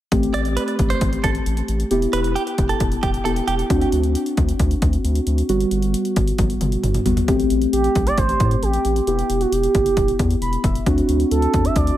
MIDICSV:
0, 0, Header, 1, 6, 480
1, 0, Start_track
1, 0, Tempo, 447761
1, 126, Time_signature, 4, 2, 24, 8
1, 12836, End_track
2, 0, Start_track
2, 0, Title_t, "Clean electric guitar"
2, 0, Program_c, 0, 27
2, 365, Note_on_c, 0, 74, 75
2, 432, Note_off_c, 0, 74, 0
2, 607, Note_on_c, 0, 71, 77
2, 673, Note_off_c, 0, 71, 0
2, 965, Note_on_c, 0, 72, 75
2, 1099, Note_off_c, 0, 72, 0
2, 1325, Note_on_c, 0, 69, 66
2, 1392, Note_off_c, 0, 69, 0
2, 2285, Note_on_c, 0, 71, 68
2, 2352, Note_off_c, 0, 71, 0
2, 2525, Note_on_c, 0, 67, 74
2, 2592, Note_off_c, 0, 67, 0
2, 2887, Note_on_c, 0, 69, 70
2, 3020, Note_off_c, 0, 69, 0
2, 3246, Note_on_c, 0, 67, 73
2, 3313, Note_off_c, 0, 67, 0
2, 3484, Note_on_c, 0, 69, 79
2, 3551, Note_off_c, 0, 69, 0
2, 3725, Note_on_c, 0, 67, 68
2, 3792, Note_off_c, 0, 67, 0
2, 12836, End_track
3, 0, Start_track
3, 0, Title_t, "Analog synth lead"
3, 0, Program_c, 1, 81
3, 8284, Note_on_c, 1, 67, 91
3, 8620, Note_off_c, 1, 67, 0
3, 8645, Note_on_c, 1, 74, 99
3, 8757, Note_off_c, 1, 74, 0
3, 8765, Note_on_c, 1, 72, 105
3, 9212, Note_off_c, 1, 72, 0
3, 9247, Note_on_c, 1, 67, 92
3, 9693, Note_off_c, 1, 67, 0
3, 9726, Note_on_c, 1, 67, 93
3, 10087, Note_on_c, 1, 66, 82
3, 10103, Note_off_c, 1, 67, 0
3, 10207, Note_on_c, 1, 67, 88
3, 10223, Note_off_c, 1, 66, 0
3, 11407, Note_off_c, 1, 67, 0
3, 12126, Note_on_c, 1, 69, 93
3, 12488, Note_on_c, 1, 76, 96
3, 12504, Note_off_c, 1, 69, 0
3, 12609, Note_on_c, 1, 74, 107
3, 12625, Note_off_c, 1, 76, 0
3, 12836, Note_off_c, 1, 74, 0
3, 12836, End_track
4, 0, Start_track
4, 0, Title_t, "Synth keys"
4, 0, Program_c, 2, 88
4, 126, Note_on_c, 2, 57, 68
4, 127, Note_on_c, 2, 60, 63
4, 127, Note_on_c, 2, 67, 78
4, 2008, Note_off_c, 2, 57, 0
4, 2008, Note_off_c, 2, 60, 0
4, 2008, Note_off_c, 2, 67, 0
4, 2047, Note_on_c, 2, 59, 69
4, 2047, Note_on_c, 2, 64, 66
4, 2047, Note_on_c, 2, 67, 77
4, 3458, Note_off_c, 2, 59, 0
4, 3458, Note_off_c, 2, 64, 0
4, 3458, Note_off_c, 2, 67, 0
4, 3487, Note_on_c, 2, 59, 54
4, 3488, Note_on_c, 2, 64, 48
4, 3488, Note_on_c, 2, 67, 61
4, 3967, Note_off_c, 2, 59, 0
4, 3967, Note_off_c, 2, 64, 0
4, 3967, Note_off_c, 2, 67, 0
4, 3967, Note_on_c, 2, 62, 66
4, 3967, Note_on_c, 2, 66, 80
4, 3968, Note_on_c, 2, 60, 72
4, 5848, Note_off_c, 2, 62, 0
4, 5848, Note_off_c, 2, 66, 0
4, 5849, Note_off_c, 2, 60, 0
4, 5887, Note_on_c, 2, 55, 69
4, 5887, Note_on_c, 2, 59, 67
4, 5887, Note_on_c, 2, 66, 83
4, 7533, Note_off_c, 2, 55, 0
4, 7533, Note_off_c, 2, 59, 0
4, 7533, Note_off_c, 2, 66, 0
4, 7566, Note_on_c, 2, 55, 54
4, 7566, Note_on_c, 2, 59, 49
4, 7566, Note_on_c, 2, 66, 57
4, 7805, Note_on_c, 2, 67, 80
4, 7806, Note_off_c, 2, 55, 0
4, 7806, Note_off_c, 2, 59, 0
4, 7806, Note_off_c, 2, 66, 0
4, 7806, Note_on_c, 2, 57, 73
4, 7806, Note_on_c, 2, 60, 66
4, 9687, Note_off_c, 2, 67, 0
4, 9688, Note_off_c, 2, 57, 0
4, 9688, Note_off_c, 2, 60, 0
4, 9727, Note_on_c, 2, 64, 58
4, 9727, Note_on_c, 2, 67, 71
4, 9728, Note_on_c, 2, 59, 63
4, 11169, Note_on_c, 2, 83, 69
4, 11391, Note_off_c, 2, 83, 0
4, 11409, Note_on_c, 2, 76, 66
4, 11608, Note_off_c, 2, 64, 0
4, 11609, Note_off_c, 2, 59, 0
4, 11609, Note_off_c, 2, 67, 0
4, 11631, Note_off_c, 2, 76, 0
4, 11650, Note_on_c, 2, 66, 84
4, 11651, Note_on_c, 2, 60, 74
4, 11651, Note_on_c, 2, 62, 67
4, 12836, Note_off_c, 2, 60, 0
4, 12836, Note_off_c, 2, 62, 0
4, 12836, Note_off_c, 2, 66, 0
4, 12836, End_track
5, 0, Start_track
5, 0, Title_t, "Analog synth bass"
5, 0, Program_c, 3, 38
5, 127, Note_on_c, 3, 33, 102
5, 295, Note_off_c, 3, 33, 0
5, 366, Note_on_c, 3, 33, 95
5, 618, Note_off_c, 3, 33, 0
5, 849, Note_on_c, 3, 33, 102
5, 1016, Note_off_c, 3, 33, 0
5, 1086, Note_on_c, 3, 33, 92
5, 1254, Note_off_c, 3, 33, 0
5, 1328, Note_on_c, 3, 33, 92
5, 1496, Note_off_c, 3, 33, 0
5, 1567, Note_on_c, 3, 33, 94
5, 1735, Note_off_c, 3, 33, 0
5, 1808, Note_on_c, 3, 33, 99
5, 1975, Note_off_c, 3, 33, 0
5, 2047, Note_on_c, 3, 28, 102
5, 2215, Note_off_c, 3, 28, 0
5, 2287, Note_on_c, 3, 28, 93
5, 2539, Note_off_c, 3, 28, 0
5, 2770, Note_on_c, 3, 28, 98
5, 2937, Note_off_c, 3, 28, 0
5, 3007, Note_on_c, 3, 28, 95
5, 3175, Note_off_c, 3, 28, 0
5, 3248, Note_on_c, 3, 28, 99
5, 3416, Note_off_c, 3, 28, 0
5, 3486, Note_on_c, 3, 28, 101
5, 3654, Note_off_c, 3, 28, 0
5, 3727, Note_on_c, 3, 28, 104
5, 3895, Note_off_c, 3, 28, 0
5, 3967, Note_on_c, 3, 38, 107
5, 4135, Note_off_c, 3, 38, 0
5, 4207, Note_on_c, 3, 38, 95
5, 4459, Note_off_c, 3, 38, 0
5, 4690, Note_on_c, 3, 38, 102
5, 4857, Note_off_c, 3, 38, 0
5, 4927, Note_on_c, 3, 38, 99
5, 5095, Note_off_c, 3, 38, 0
5, 5168, Note_on_c, 3, 38, 96
5, 5336, Note_off_c, 3, 38, 0
5, 5407, Note_on_c, 3, 38, 95
5, 5575, Note_off_c, 3, 38, 0
5, 5647, Note_on_c, 3, 38, 94
5, 5815, Note_off_c, 3, 38, 0
5, 5887, Note_on_c, 3, 31, 102
5, 6055, Note_off_c, 3, 31, 0
5, 6125, Note_on_c, 3, 31, 88
5, 6378, Note_off_c, 3, 31, 0
5, 6609, Note_on_c, 3, 31, 105
5, 6776, Note_off_c, 3, 31, 0
5, 6846, Note_on_c, 3, 31, 99
5, 7014, Note_off_c, 3, 31, 0
5, 7085, Note_on_c, 3, 31, 100
5, 7254, Note_off_c, 3, 31, 0
5, 7326, Note_on_c, 3, 31, 98
5, 7494, Note_off_c, 3, 31, 0
5, 7566, Note_on_c, 3, 31, 103
5, 7734, Note_off_c, 3, 31, 0
5, 7805, Note_on_c, 3, 33, 100
5, 7974, Note_off_c, 3, 33, 0
5, 8047, Note_on_c, 3, 33, 95
5, 8215, Note_off_c, 3, 33, 0
5, 8287, Note_on_c, 3, 33, 96
5, 8455, Note_off_c, 3, 33, 0
5, 8529, Note_on_c, 3, 35, 94
5, 8696, Note_off_c, 3, 35, 0
5, 8766, Note_on_c, 3, 33, 95
5, 8935, Note_off_c, 3, 33, 0
5, 9008, Note_on_c, 3, 45, 93
5, 9175, Note_off_c, 3, 45, 0
5, 9247, Note_on_c, 3, 33, 92
5, 9415, Note_off_c, 3, 33, 0
5, 9487, Note_on_c, 3, 33, 93
5, 9655, Note_off_c, 3, 33, 0
5, 9726, Note_on_c, 3, 28, 102
5, 9894, Note_off_c, 3, 28, 0
5, 9965, Note_on_c, 3, 28, 94
5, 10134, Note_off_c, 3, 28, 0
5, 10207, Note_on_c, 3, 28, 106
5, 10375, Note_off_c, 3, 28, 0
5, 10450, Note_on_c, 3, 30, 92
5, 10617, Note_off_c, 3, 30, 0
5, 10686, Note_on_c, 3, 28, 106
5, 10855, Note_off_c, 3, 28, 0
5, 10928, Note_on_c, 3, 40, 100
5, 11096, Note_off_c, 3, 40, 0
5, 11167, Note_on_c, 3, 28, 101
5, 11335, Note_off_c, 3, 28, 0
5, 11406, Note_on_c, 3, 28, 97
5, 11574, Note_off_c, 3, 28, 0
5, 11647, Note_on_c, 3, 38, 107
5, 11815, Note_off_c, 3, 38, 0
5, 11887, Note_on_c, 3, 38, 91
5, 12055, Note_off_c, 3, 38, 0
5, 12127, Note_on_c, 3, 38, 95
5, 12295, Note_off_c, 3, 38, 0
5, 12370, Note_on_c, 3, 40, 84
5, 12537, Note_off_c, 3, 40, 0
5, 12607, Note_on_c, 3, 38, 97
5, 12774, Note_off_c, 3, 38, 0
5, 12836, End_track
6, 0, Start_track
6, 0, Title_t, "Drums"
6, 126, Note_on_c, 9, 36, 104
6, 127, Note_on_c, 9, 42, 73
6, 234, Note_off_c, 9, 36, 0
6, 234, Note_off_c, 9, 42, 0
6, 248, Note_on_c, 9, 42, 48
6, 355, Note_off_c, 9, 42, 0
6, 364, Note_on_c, 9, 42, 75
6, 471, Note_off_c, 9, 42, 0
6, 484, Note_on_c, 9, 42, 46
6, 591, Note_off_c, 9, 42, 0
6, 608, Note_on_c, 9, 42, 82
6, 715, Note_off_c, 9, 42, 0
6, 726, Note_on_c, 9, 42, 47
6, 833, Note_off_c, 9, 42, 0
6, 846, Note_on_c, 9, 42, 66
6, 849, Note_on_c, 9, 36, 84
6, 953, Note_off_c, 9, 42, 0
6, 957, Note_off_c, 9, 36, 0
6, 966, Note_on_c, 9, 42, 58
6, 1073, Note_off_c, 9, 42, 0
6, 1084, Note_on_c, 9, 42, 74
6, 1086, Note_on_c, 9, 36, 91
6, 1191, Note_off_c, 9, 42, 0
6, 1194, Note_off_c, 9, 36, 0
6, 1208, Note_on_c, 9, 42, 47
6, 1315, Note_off_c, 9, 42, 0
6, 1326, Note_on_c, 9, 42, 77
6, 1328, Note_on_c, 9, 36, 89
6, 1434, Note_off_c, 9, 42, 0
6, 1435, Note_off_c, 9, 36, 0
6, 1446, Note_on_c, 9, 42, 45
6, 1553, Note_off_c, 9, 42, 0
6, 1568, Note_on_c, 9, 42, 65
6, 1675, Note_off_c, 9, 42, 0
6, 1684, Note_on_c, 9, 42, 51
6, 1791, Note_off_c, 9, 42, 0
6, 1805, Note_on_c, 9, 42, 72
6, 1913, Note_off_c, 9, 42, 0
6, 1927, Note_on_c, 9, 42, 48
6, 2034, Note_off_c, 9, 42, 0
6, 2046, Note_on_c, 9, 42, 75
6, 2153, Note_off_c, 9, 42, 0
6, 2168, Note_on_c, 9, 42, 47
6, 2276, Note_off_c, 9, 42, 0
6, 2284, Note_on_c, 9, 42, 76
6, 2391, Note_off_c, 9, 42, 0
6, 2405, Note_on_c, 9, 42, 46
6, 2512, Note_off_c, 9, 42, 0
6, 2529, Note_on_c, 9, 42, 84
6, 2637, Note_off_c, 9, 42, 0
6, 2648, Note_on_c, 9, 42, 49
6, 2755, Note_off_c, 9, 42, 0
6, 2767, Note_on_c, 9, 42, 70
6, 2770, Note_on_c, 9, 36, 82
6, 2874, Note_off_c, 9, 42, 0
6, 2877, Note_off_c, 9, 36, 0
6, 2887, Note_on_c, 9, 42, 60
6, 2994, Note_off_c, 9, 42, 0
6, 3004, Note_on_c, 9, 42, 77
6, 3007, Note_on_c, 9, 36, 89
6, 3112, Note_off_c, 9, 42, 0
6, 3114, Note_off_c, 9, 36, 0
6, 3127, Note_on_c, 9, 42, 48
6, 3234, Note_off_c, 9, 42, 0
6, 3246, Note_on_c, 9, 42, 74
6, 3248, Note_on_c, 9, 36, 91
6, 3354, Note_off_c, 9, 42, 0
6, 3355, Note_off_c, 9, 36, 0
6, 3366, Note_on_c, 9, 42, 46
6, 3473, Note_off_c, 9, 42, 0
6, 3489, Note_on_c, 9, 42, 63
6, 3597, Note_off_c, 9, 42, 0
6, 3606, Note_on_c, 9, 42, 55
6, 3713, Note_off_c, 9, 42, 0
6, 3727, Note_on_c, 9, 42, 69
6, 3834, Note_off_c, 9, 42, 0
6, 3849, Note_on_c, 9, 42, 49
6, 3956, Note_off_c, 9, 42, 0
6, 3967, Note_on_c, 9, 36, 106
6, 3968, Note_on_c, 9, 42, 74
6, 4074, Note_off_c, 9, 36, 0
6, 4075, Note_off_c, 9, 42, 0
6, 4090, Note_on_c, 9, 42, 49
6, 4197, Note_off_c, 9, 42, 0
6, 4206, Note_on_c, 9, 42, 71
6, 4314, Note_off_c, 9, 42, 0
6, 4325, Note_on_c, 9, 42, 47
6, 4433, Note_off_c, 9, 42, 0
6, 4451, Note_on_c, 9, 42, 84
6, 4558, Note_off_c, 9, 42, 0
6, 4568, Note_on_c, 9, 42, 50
6, 4676, Note_off_c, 9, 42, 0
6, 4688, Note_on_c, 9, 42, 67
6, 4690, Note_on_c, 9, 36, 86
6, 4795, Note_off_c, 9, 42, 0
6, 4797, Note_off_c, 9, 36, 0
6, 4809, Note_on_c, 9, 42, 60
6, 4916, Note_off_c, 9, 42, 0
6, 4925, Note_on_c, 9, 42, 78
6, 4927, Note_on_c, 9, 36, 88
6, 5033, Note_off_c, 9, 42, 0
6, 5034, Note_off_c, 9, 36, 0
6, 5049, Note_on_c, 9, 42, 48
6, 5156, Note_off_c, 9, 42, 0
6, 5167, Note_on_c, 9, 42, 78
6, 5168, Note_on_c, 9, 36, 91
6, 5274, Note_off_c, 9, 42, 0
6, 5276, Note_off_c, 9, 36, 0
6, 5286, Note_on_c, 9, 42, 46
6, 5393, Note_off_c, 9, 42, 0
6, 5409, Note_on_c, 9, 42, 65
6, 5517, Note_off_c, 9, 42, 0
6, 5525, Note_on_c, 9, 42, 53
6, 5633, Note_off_c, 9, 42, 0
6, 5646, Note_on_c, 9, 42, 73
6, 5754, Note_off_c, 9, 42, 0
6, 5768, Note_on_c, 9, 42, 51
6, 5875, Note_off_c, 9, 42, 0
6, 5887, Note_on_c, 9, 42, 73
6, 5994, Note_off_c, 9, 42, 0
6, 6008, Note_on_c, 9, 42, 49
6, 6115, Note_off_c, 9, 42, 0
6, 6125, Note_on_c, 9, 42, 72
6, 6232, Note_off_c, 9, 42, 0
6, 6244, Note_on_c, 9, 42, 48
6, 6351, Note_off_c, 9, 42, 0
6, 6369, Note_on_c, 9, 42, 82
6, 6476, Note_off_c, 9, 42, 0
6, 6486, Note_on_c, 9, 42, 49
6, 6593, Note_off_c, 9, 42, 0
6, 6606, Note_on_c, 9, 42, 70
6, 6609, Note_on_c, 9, 36, 91
6, 6713, Note_off_c, 9, 42, 0
6, 6717, Note_off_c, 9, 36, 0
6, 6727, Note_on_c, 9, 42, 59
6, 6834, Note_off_c, 9, 42, 0
6, 6844, Note_on_c, 9, 42, 77
6, 6846, Note_on_c, 9, 36, 90
6, 6846, Note_on_c, 9, 48, 51
6, 6951, Note_off_c, 9, 42, 0
6, 6953, Note_off_c, 9, 36, 0
6, 6953, Note_off_c, 9, 48, 0
6, 6966, Note_on_c, 9, 42, 48
6, 7073, Note_off_c, 9, 42, 0
6, 7084, Note_on_c, 9, 42, 79
6, 7085, Note_on_c, 9, 47, 65
6, 7192, Note_off_c, 9, 42, 0
6, 7192, Note_off_c, 9, 47, 0
6, 7205, Note_on_c, 9, 42, 45
6, 7312, Note_off_c, 9, 42, 0
6, 7326, Note_on_c, 9, 45, 72
6, 7328, Note_on_c, 9, 42, 66
6, 7433, Note_off_c, 9, 45, 0
6, 7435, Note_off_c, 9, 42, 0
6, 7444, Note_on_c, 9, 42, 52
6, 7446, Note_on_c, 9, 45, 66
6, 7552, Note_off_c, 9, 42, 0
6, 7554, Note_off_c, 9, 45, 0
6, 7565, Note_on_c, 9, 42, 72
6, 7566, Note_on_c, 9, 43, 87
6, 7672, Note_off_c, 9, 42, 0
6, 7673, Note_off_c, 9, 43, 0
6, 7685, Note_on_c, 9, 43, 81
6, 7687, Note_on_c, 9, 42, 52
6, 7793, Note_off_c, 9, 43, 0
6, 7794, Note_off_c, 9, 42, 0
6, 7806, Note_on_c, 9, 36, 108
6, 7806, Note_on_c, 9, 42, 74
6, 7913, Note_off_c, 9, 36, 0
6, 7913, Note_off_c, 9, 42, 0
6, 7928, Note_on_c, 9, 42, 49
6, 8035, Note_off_c, 9, 42, 0
6, 8044, Note_on_c, 9, 42, 70
6, 8151, Note_off_c, 9, 42, 0
6, 8164, Note_on_c, 9, 42, 48
6, 8271, Note_off_c, 9, 42, 0
6, 8289, Note_on_c, 9, 42, 83
6, 8396, Note_off_c, 9, 42, 0
6, 8407, Note_on_c, 9, 42, 50
6, 8514, Note_off_c, 9, 42, 0
6, 8527, Note_on_c, 9, 42, 68
6, 8529, Note_on_c, 9, 36, 85
6, 8634, Note_off_c, 9, 42, 0
6, 8637, Note_off_c, 9, 36, 0
6, 8648, Note_on_c, 9, 42, 58
6, 8755, Note_off_c, 9, 42, 0
6, 8764, Note_on_c, 9, 42, 74
6, 8766, Note_on_c, 9, 36, 91
6, 8871, Note_off_c, 9, 42, 0
6, 8874, Note_off_c, 9, 36, 0
6, 8887, Note_on_c, 9, 42, 48
6, 8994, Note_off_c, 9, 42, 0
6, 9005, Note_on_c, 9, 42, 76
6, 9007, Note_on_c, 9, 36, 89
6, 9113, Note_off_c, 9, 42, 0
6, 9115, Note_off_c, 9, 36, 0
6, 9125, Note_on_c, 9, 42, 45
6, 9232, Note_off_c, 9, 42, 0
6, 9247, Note_on_c, 9, 42, 63
6, 9355, Note_off_c, 9, 42, 0
6, 9363, Note_on_c, 9, 42, 53
6, 9471, Note_off_c, 9, 42, 0
6, 9485, Note_on_c, 9, 42, 69
6, 9592, Note_off_c, 9, 42, 0
6, 9607, Note_on_c, 9, 42, 51
6, 9714, Note_off_c, 9, 42, 0
6, 9726, Note_on_c, 9, 42, 76
6, 9834, Note_off_c, 9, 42, 0
6, 9849, Note_on_c, 9, 42, 50
6, 9956, Note_off_c, 9, 42, 0
6, 9966, Note_on_c, 9, 42, 75
6, 10073, Note_off_c, 9, 42, 0
6, 10085, Note_on_c, 9, 42, 48
6, 10193, Note_off_c, 9, 42, 0
6, 10211, Note_on_c, 9, 42, 84
6, 10318, Note_off_c, 9, 42, 0
6, 10328, Note_on_c, 9, 42, 49
6, 10435, Note_off_c, 9, 42, 0
6, 10448, Note_on_c, 9, 42, 69
6, 10450, Note_on_c, 9, 36, 88
6, 10555, Note_off_c, 9, 42, 0
6, 10557, Note_off_c, 9, 36, 0
6, 10569, Note_on_c, 9, 42, 59
6, 10676, Note_off_c, 9, 42, 0
6, 10686, Note_on_c, 9, 42, 76
6, 10687, Note_on_c, 9, 36, 94
6, 10793, Note_off_c, 9, 42, 0
6, 10794, Note_off_c, 9, 36, 0
6, 10809, Note_on_c, 9, 42, 48
6, 10916, Note_off_c, 9, 42, 0
6, 10928, Note_on_c, 9, 36, 90
6, 10928, Note_on_c, 9, 42, 80
6, 11035, Note_off_c, 9, 36, 0
6, 11035, Note_off_c, 9, 42, 0
6, 11047, Note_on_c, 9, 42, 48
6, 11154, Note_off_c, 9, 42, 0
6, 11169, Note_on_c, 9, 42, 64
6, 11276, Note_off_c, 9, 42, 0
6, 11286, Note_on_c, 9, 42, 53
6, 11393, Note_off_c, 9, 42, 0
6, 11405, Note_on_c, 9, 36, 87
6, 11406, Note_on_c, 9, 42, 75
6, 11512, Note_off_c, 9, 36, 0
6, 11513, Note_off_c, 9, 42, 0
6, 11529, Note_on_c, 9, 42, 50
6, 11636, Note_off_c, 9, 42, 0
6, 11647, Note_on_c, 9, 36, 109
6, 11647, Note_on_c, 9, 42, 74
6, 11754, Note_off_c, 9, 36, 0
6, 11754, Note_off_c, 9, 42, 0
6, 11769, Note_on_c, 9, 42, 49
6, 11876, Note_off_c, 9, 42, 0
6, 11886, Note_on_c, 9, 42, 73
6, 11993, Note_off_c, 9, 42, 0
6, 12005, Note_on_c, 9, 42, 47
6, 12112, Note_off_c, 9, 42, 0
6, 12129, Note_on_c, 9, 42, 82
6, 12236, Note_off_c, 9, 42, 0
6, 12246, Note_on_c, 9, 42, 49
6, 12353, Note_off_c, 9, 42, 0
6, 12366, Note_on_c, 9, 42, 68
6, 12369, Note_on_c, 9, 36, 89
6, 12473, Note_off_c, 9, 42, 0
6, 12476, Note_off_c, 9, 36, 0
6, 12487, Note_on_c, 9, 42, 59
6, 12594, Note_off_c, 9, 42, 0
6, 12603, Note_on_c, 9, 42, 77
6, 12606, Note_on_c, 9, 36, 88
6, 12711, Note_off_c, 9, 42, 0
6, 12714, Note_off_c, 9, 36, 0
6, 12727, Note_on_c, 9, 42, 48
6, 12834, Note_off_c, 9, 42, 0
6, 12836, End_track
0, 0, End_of_file